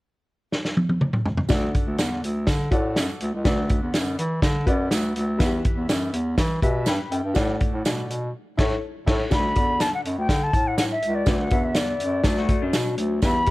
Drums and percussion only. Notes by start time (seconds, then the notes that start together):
0.52 snare
0.65 snare
0.77 high tom
0.89 high tom
1.01 mid tom
1.13 mid tom
1.26 floor tom
1.37 floor tom
1.49 kick, snare, closed hi-hat, tambourine
1.74 kick, closed hi-hat
1.98 snare, closed hi-hat, tambourine
2.24 closed hi-hat
2.47 kick, snare, closed hi-hat, tambourine
2.72 kick, closed hi-hat
2.96 snare, closed hi-hat, tambourine
3.20 closed hi-hat
3.45 kick, snare, closed hi-hat, tambourine
3.69 kick, closed hi-hat
3.93 snare, closed hi-hat, tambourine
4.19 closed hi-hat
4.42 kick, snare, closed hi-hat, tambourine
4.67 kick, closed hi-hat
4.91 snare, closed hi-hat, tambourine
5.16 closed hi-hat
5.40 kick, snare, closed hi-hat, tambourine
5.65 kick, closed hi-hat
5.89 snare, closed hi-hat, tambourine
6.13 closed hi-hat
6.38 kick, snare, closed hi-hat, tambourine
6.62 kick, closed hi-hat
6.86 snare, closed hi-hat, tambourine
7.12 closed hi-hat
7.35 kick, snare, closed hi-hat, tambourine
7.60 kick, closed hi-hat
7.85 snare, closed hi-hat, tambourine
8.10 closed hi-hat
8.59 kick, snare, crash
9.07 kick, snare, crash
9.31 kick, snare, closed hi-hat, tambourine
9.55 kick, closed hi-hat
9.80 snare, closed hi-hat, tambourine
10.05 closed hi-hat
10.29 kick, snare, closed hi-hat, tambourine
10.53 kick, closed hi-hat
10.78 snare, closed hi-hat, tambourine
11.02 closed hi-hat
11.26 kick, snare, closed hi-hat, tambourine
11.50 kick, closed hi-hat
11.74 snare, closed hi-hat, tambourine
12.00 closed hi-hat
12.24 kick, snare, closed hi-hat, tambourine
12.37 snare
12.48 kick, closed hi-hat
12.73 snare, closed hi-hat, tambourine
12.98 closed hi-hat
13.22 kick, snare, closed hi-hat, tambourine
13.46 kick, closed hi-hat